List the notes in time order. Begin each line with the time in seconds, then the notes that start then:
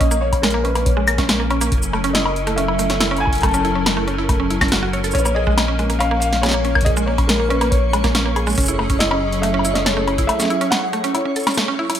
Already playing: A#1 A#3 C#4 A#4
0.00 C#4 D#5, kick, closed hi-hat
0.11 A#3, shaker
0.21 C#5
0.33 kick, closed hi-hat, high woodblock
0.42 G#3 A#4, snare, closed hi-hat
0.47 closed hi-hat
0.50 A#3, closed hi-hat
0.63 C#4 B4, closed hi-hat
0.75 A#3, closed hi-hat, high woodblock
0.85 C#5, kick, closed hi-hat
0.97 G#3
1.08 A#3, closed hi-hat, high woodblock, shaker
1.18 C#4, kick, snare, closed hi-hat
1.29 G#3, snare, closed hi-hat
1.40 A#3
1.50 C#4, closed hi-hat, high woodblock
1.61 A#3, closed hi-hat, shaker
1.72 F#1 F#3 E4 A4, kick, closed hi-hat
1.83 shaker
1.93 A3, high woodblock
2.04 C#4, closed hi-hat
2.13 E4 D#5, snare, closed hi-hat
2.26 C#4, high woodblock
2.36 closed hi-hat
2.47 A3, closed hi-hat
2.56 C#4 E5, closed hi-hat
2.68 E4, high woodblock
2.79 A3, closed hi-hat, shaker
2.90 C#4, snare, closed hi-hat
3.00 E4, snare, closed hi-hat
3.11 C#4, high woodblock
3.17 G#5, closed hi-hat, high woodblock
3.25 kick, high woodblock
3.33 closed hi-hat
3.35 closed hi-hat
3.38 closed hi-hat
3.41 A3 A5, kick, closed hi-hat
3.43 closed hi-hat, high woodblock
3.46 closed hi-hat
3.49 closed hi-hat
3.51 C#4, closed hi-hat, shaker
3.65 E4, closed hi-hat
3.75 C#4
3.86 snare, closed hi-hat, high woodblock
3.97 A3
4.08 C#4, closed hi-hat
4.18 E4
4.29 A3, kick, closed hi-hat, high woodblock
4.40 C#4
4.50 E4, closed hi-hat
4.61 C#4, kick, snare, closed hi-hat, high woodblock
4.68 snare, closed hi-hat
4.72 F#4, closed hi-hat
4.75 closed hi-hat
4.83 F#4
4.93 C#5, closed hi-hat
5.04 A4, closed hi-hat, shaker
5.11 A#1 A#3 C#4 C#5, kick, closed hi-hat, shaker
5.18 B4, shaker
5.24 A#3 C#5, high woodblock, shaker
5.35 G#4 D#5
5.47 G#3, kick
5.58 A#3, snare, closed hi-hat, high woodblock
5.68 C#4
5.79 G#3, closed hi-hat
5.90 A#3, closed hi-hat
5.99 C#4 F5, closed hi-hat, high woodblock
6.11 A#3
6.20 F5, closed hi-hat, shaker
6.33 snare, closed hi-hat
6.42 G#3 C#5, snare, closed hi-hat, high woodblock
6.46 snare
6.49 snare
6.51 A#3, snare
6.65 C#4, closed hi-hat
6.75 A#3, kick, high woodblock
6.81 D#5, kick, closed hi-hat
6.86 G#4, kick, closed hi-hat
6.90 kick
6.97 G#3, shaker
7.06 A#3 C#5
7.18 C#4, kick, closed hi-hat, high woodblock
7.27 G#3 A#4, snare, closed hi-hat
7.40 A#3
7.49 C#4 B4, closed hi-hat
7.61 A#3, closed hi-hat, high woodblock
7.70 C#5, kick, closed hi-hat
7.93 G#3, closed hi-hat, high woodblock
8.04 A#3, kick, snare, closed hi-hat
8.15 C#4, snare, closed hi-hat
8.26 A#3
8.36 G#4, closed hi-hat, high woodblock
8.47 G#3, shaker
8.50 shaker
8.52 shaker
8.55 F#3 C#4 G#4 A4, closed hi-hat, shaker
8.58 F#1 C#4 E4, kick, shaker
8.60 shaker
8.63 shaker
8.66 shaker
8.68 E4, shaker
8.79 A3, high woodblock
8.90 C#4, kick, closed hi-hat
8.99 E4 D#5, snare, closed hi-hat
9.11 C#4, high woodblock
9.33 closed hi-hat
9.42 A3 E5, closed hi-hat
9.54 C#4
9.59 high woodblock
9.65 E4, closed hi-hat, shaker
9.74 C#4 D#5, snare, closed hi-hat
9.84 A4 C#5, snare, closed hi-hat
9.97 A3
10.08 C#4, closed hi-hat, high woodblock
10.18 E4, kick, closed hi-hat
10.27 A3 E5, closed hi-hat, high woodblock
10.40 C#4, snare, shaker
10.42 snare
10.45 snare
10.48 E4, snare, closed hi-hat
10.61 C#4, closed hi-hat
10.70 F#5, snare, closed hi-hat, high woodblock
10.93 A3, closed hi-hat
11.04 C#4, closed hi-hat
11.14 E4 C#5, closed hi-hat, high woodblock
11.25 C#4
11.36 A4, closed hi-hat, shaker
11.40 shaker
11.43 C#4, snare, closed hi-hat, high woodblock, shaker
11.47 shaker
11.50 shaker
11.54 A3, snare, closed hi-hat, shaker
11.68 C#4
11.79 E4
11.90 E4, closed hi-hat, high woodblock
11.95 closed hi-hat